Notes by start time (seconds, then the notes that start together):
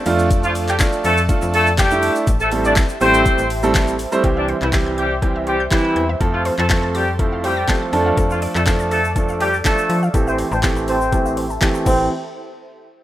Already playing: A4 A5
0.06 F2 F3 A3 D4 F4 D5, open hi-hat, shaker
0.19 shaker
0.31 kick, closed hi-hat, shaker
0.43 F3 F4, shaker
0.55 open hi-hat, shaker
0.68 G3 G4, clap, shaker
0.79 A3 D4 F4, kick, snare, clap, closed hi-hat, shaker
0.93 shaker
1.04 F2 A3 A4, open hi-hat, shaker
1.17 shaker
1.29 A3 D4 F4, kick, closed hi-hat, shaker
1.42 F2, shaker
1.54 A3 A4, open hi-hat, shaker
1.66 shaker
1.77 G3 G4, kick, snare, clap, closed hi-hat, shaker
1.91 A3 D4 E4, shaker
2.02 open hi-hat, shaker
2.15 shaker
2.27 A1 G4 C5 E5, kick, closed hi-hat, shaker
2.40 A3 A4, shaker
2.51 G3 A3 C4 E4 A4, open hi-hat, shaker
2.64 D4 D5, shaker
2.75 kick, snare, clap, closed hi-hat, shaker
2.89 shaker
3.01 A1 G3 A3 C4 E4 G4 C5, open hi-hat, shaker
3.14 shaker
3.25 kick, closed hi-hat, shaker
3.38 A1, shaker
3.50 open hi-hat, shaker
3.63 G3 A3 C4 E4 A4, shaker
3.74 kick, snare, clap, closed hi-hat, shaker
3.87 shaker
3.99 open hi-hat, shaker
4.12 G3 A3 C4 E4 C5, shaker
4.24 C2 E3 G3 C4 G4 C5 E5 C6, kick, closed hi-hat
4.37 D4 D5 E5
4.48 C5, closed hi-hat
4.61 C2 E3 E4 G6, clap
4.72 E3 G3 C4 G4 G6, kick, snare, clap, closed hi-hat
4.86 G6
4.98 G3 G4 G6, closed hi-hat
5.22 E3 G3 C4 G4, kick, closed hi-hat
5.36 E5
5.47 G3 G4 C5, closed hi-hat
5.60 G6
5.71 E3 G3 C4 E4 G4 G6, kick, snare, clap, closed hi-hat
5.85 G6
5.96 E2 G6, closed hi-hat
6.09 E5
6.20 F2 F3 A3 C4 A4 A5 C6, kick, closed hi-hat
6.33 F3 F4 F5
6.45 C5, open hi-hat
6.58 F2 A3 A4 A6, clap
6.69 F3 A3 C4 A4 A6, kick, snare, clap, closed hi-hat
6.83 A6
6.94 G3 G4 A6, open hi-hat
7.19 F3 A3 C4 E4 A4, kick, closed hi-hat
7.32 F5
7.44 G3 G4 C5, open hi-hat
7.57 A6
7.68 F3 A3 C4 A4 A6, kick, snare, clap, closed hi-hat
7.82 A6
7.92 F2 F3 A3 D4 A4 D5 D6 A6, open hi-hat
8.06 F5
8.17 F2 A4, kick, closed hi-hat, shaker
8.30 F3 F4 F5, shaker
8.42 D5, open hi-hat, shaker
8.55 F2 A3 A4 A6, clap, shaker
8.66 F3 A3 D4 A4 A6, kick, snare, clap, closed hi-hat, shaker
8.79 A6, shaker
8.91 A3 A4 A6, open hi-hat, shaker
9.04 shaker
9.16 F3 A3 D4 A4, kick, closed hi-hat, shaker
9.29 F5, shaker
9.40 G3 G4 D5, open hi-hat
9.53 A6, shaker
9.64 F3 A3 D4 A4, kick, snare, clap, closed hi-hat, shaker
9.78 A6, shaker
9.90 F3 A6, open hi-hat
10.03 F5, shaker
10.14 A1 E3 A3 C4 G4 A4 E5 G5 C6, kick, closed hi-hat, shaker
10.27 C4 C5 E5, shaker
10.38 C5, open hi-hat, shaker
10.51 A1 C4 C5 A5, shaker
10.62 E3 A3 C4 G4 A5, kick, snare, clap, closed hi-hat, shaker
10.76 A5, shaker
10.88 C4 C5 A5, open hi-hat, shaker
11.01 shaker
11.12 E3 A3 C4 G4 A4, kick, closed hi-hat, shaker
11.26 E5, shaker
11.37 C5, open hi-hat
11.50 A5, shaker
11.61 E3 A3 C4 G4 A5, kick, snare, clap, closed hi-hat, shaker
11.75 A5, shaker
11.86 A1 E3 A3 C4 E4 G4 A4 C5 E5 G5, kick, crash, shaker